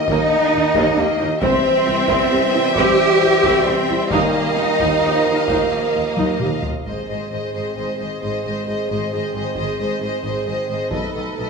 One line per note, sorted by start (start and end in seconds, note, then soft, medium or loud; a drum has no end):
0.00 1.38 D#3 medium
0.00 1.37 A#3 medium
0.00 1.38 G4 medium
0.00 1.37 D#5 medium
0.00 1.38 D#5 medium
0.08 0.17 D#2 medium
0.08 0.29 A#3 medium
0.08 0.95 D#4 loud
0.08 taiko medium
0.53 0.61 D#2 medium
0.53 0.62 D#4 medium
0.74 0.83 D#2 medium
0.74 0.96 A#3 medium
0.74 taiko medium
0.97 1.05 D#2 medium
0.97 1.19 A#3 medium
0.97 1.07 G4 medium
1.20 1.28 D#2 medium
1.20 1.29 D#4 medium
1.42 1.51 C2 medium
1.42 3.94 E3 medium
1.42 4.99 G3 medium
1.42 2.72 C4 loud
1.42 1.62 C4 medium
1.42 3.94 G4 medium
1.42 3.94 C5 medium
1.42 4.07 E5 medium
1.42 4.08 G5 medium
1.42 taiko medium
1.86 1.95 C2 medium
1.86 1.94 E4 medium
2.08 2.17 C2 medium
2.08 2.29 C4 medium
2.08 taiko medium
2.31 2.40 C2 medium
2.31 2.39 G4 medium
2.54 2.62 C2 medium
2.54 2.62 E4 medium
2.76 2.85 C2 medium
2.76 2.98 C4 medium
2.76 3.66 G4 loud
2.76 taiko medium
3.22 3.30 C2 medium
3.22 3.30 E4 medium
3.43 3.52 C2 medium
3.43 3.65 C4 medium
3.43 taiko medium
3.66 3.75 C2 medium
3.66 4.11 C4 loud
3.66 3.75 G4 medium
3.89 3.97 C2 medium
3.89 3.97 E4 medium
4.10 4.20 D#2 medium
4.10 6.60 D#3 medium
4.10 4.76 D#3 medium
4.10 4.57 A#3 medium
4.10 4.33 D#4 medium
4.10 6.60 G4 medium
4.10 6.60 A#4 medium
4.10 6.62 D#5 medium
4.10 6.62 F5 medium
4.10 taiko medium
4.57 4.65 D#2 soft
4.57 5.49 D#4 medium
4.57 4.66 F4 medium
4.80 4.88 D#2 medium
4.80 5.01 D#4 medium
4.80 taiko medium
5.03 5.11 D#2 medium
5.03 6.64 F3 medium
5.03 5.11 G4 medium
5.26 5.34 D#2 soft
5.26 5.34 F4 soft
5.48 5.57 D#2 medium
5.48 6.39 A#3 medium
5.48 5.70 D#4 medium
5.48 taiko medium
5.95 6.03 D#2 soft
5.95 6.03 F4 soft
6.17 6.25 D#2 medium
6.17 6.39 D#4 soft
6.17 taiko high medium
6.40 6.49 D#2 soft
6.40 6.49 G4 soft
6.40 taiko mid medium
6.63 6.71 D#2 soft
6.63 6.71 F4 soft
6.63 taiko low medium
6.85 6.94 G#1 soft
6.85 6.94 G#2 soft
6.85 10.88 G#3 soft
6.85 10.88 C4 soft
6.85 7.08 G#4 soft
6.85 7.07 C5 soft
6.85 7.07 D#5 soft
6.85 taiko soft
7.08 7.17 G#1 soft
7.08 7.17 G#2 soft
7.08 7.31 G#4 soft
7.08 7.29 C5 soft
7.08 7.30 D#5 soft
7.30 7.39 G#1 soft
7.30 7.40 G#2 soft
7.30 7.53 G#4 soft
7.30 7.52 C5 soft
7.30 7.52 D#5 soft
7.53 7.63 G#1 soft
7.53 7.62 G#2 soft
7.53 7.76 G#4 soft
7.53 7.75 C5 soft
7.53 7.75 D#5 soft
7.76 7.84 G#1 soft
7.76 7.85 G#2 soft
7.76 7.99 G#4 soft
7.76 7.97 C5 soft
7.76 7.98 D#5 soft
7.98 8.07 G#1 soft
7.98 8.07 G#2 soft
7.98 8.22 G#4 soft
7.98 8.20 C5 soft
7.98 8.21 D#5 soft
8.21 8.31 G#1 soft
8.21 8.30 G#2 soft
8.21 8.44 G#4 soft
8.21 8.44 C5 soft
8.21 8.43 D#5 soft
8.45 8.53 G#1 soft
8.45 8.53 G#2 soft
8.45 8.66 G#4 soft
8.45 8.66 C5 soft
8.45 8.66 D#5 soft
8.67 8.75 G#1 soft
8.67 8.75 G#2 soft
8.67 8.88 G#4 soft
8.67 8.89 C5 soft
8.67 8.88 D#5 soft
8.89 8.98 G#1 soft
8.89 8.98 G#2 soft
8.89 9.11 G#4 soft
8.89 9.12 C5 soft
8.89 9.11 D#5 soft
9.12 9.20 G#1 soft
9.12 9.20 G#2 medium
9.12 9.33 G#4 soft
9.12 9.34 C5 soft
9.12 9.33 D#5 soft
9.34 9.42 G#1 soft
9.34 9.42 G#2 soft
9.34 9.56 G#4 soft
9.34 9.55 C5 soft
9.34 9.56 D#5 soft
9.55 9.65 G#1 soft
9.55 9.65 G#2 medium
9.55 9.78 G#4 soft
9.55 9.78 C5 soft
9.55 9.78 D#5 soft
9.55 taiko soft
9.79 9.87 G#1 soft
9.79 9.88 G#2 soft
9.79 10.00 G#4 soft
9.79 10.01 C5 soft
9.79 10.01 D#5 soft
10.01 10.09 G#1 soft
10.01 10.09 G#2 soft
10.01 10.23 G#4 soft
10.01 10.24 C5 soft
10.01 10.22 D#5 soft
10.23 10.32 G#1 soft
10.23 10.32 G#2 soft
10.23 10.45 G#4 soft
10.23 10.46 C5 soft
10.23 10.45 D#5 soft
10.23 taiko soft
10.46 10.55 G#1 soft
10.46 10.55 G#2 soft
10.46 10.68 G#4 soft
10.46 10.69 C5 soft
10.46 10.68 D#5 soft
10.69 10.77 G#1 soft
10.69 10.77 G#2 soft
10.69 10.91 G#4 soft
10.69 10.92 C5 soft
10.69 10.90 D#5 soft
10.91 11.00 B1 soft
10.91 10.99 B2 soft
10.91 11.50 A3 soft
10.91 11.50 D#4 soft
10.91 11.14 A4 soft
10.91 11.15 B4 soft
10.91 11.13 D#5 soft
10.91 taiko medium
11.14 11.23 B1 soft
11.14 11.23 B2 soft
11.14 11.37 A4 soft
11.14 11.38 B4 soft
11.14 11.36 D#5 soft
11.37 11.46 B1 soft
11.37 11.46 B2 soft
11.37 11.50 A4 soft
11.37 11.50 B4 soft
11.37 11.50 D#5 soft